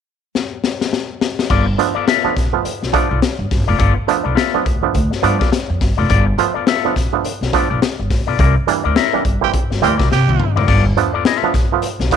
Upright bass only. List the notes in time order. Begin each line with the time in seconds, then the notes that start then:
1.50 G1
1.96 muted upright bass stroke
2.24 muted upright bass stroke
2.37 A#1
2.64 muted upright bass stroke
2.82 B1
3.11 B1
3.39 G1
3.51 G1
3.68 F1
3.79 G1
4.25 B1
4.55 muted upright bass stroke
4.66 D2
4.95 D2
5.23 G2
5.70 F2
5.81 G1
5.98 F1
6.10 G1
6.56 muted upright bass stroke
6.85 muted upright bass stroke
6.96 A#1
7.24 muted upright bass stroke
7.41 B1
7.71 B1
7.99 G1
8.11 A1
8.27 B1
8.39 C2
8.85 D2
9.14 muted upright bass stroke
9.25 G1
9.70 G1
9.82 D2
9.99 C2
10.11 C3
10.27 C2
10.56 F1
10.68 G1
11.14 muted upright bass stroke
11.42 muted upright bass stroke
11.54 A#1
11.82 muted upright bass stroke
11.99 B1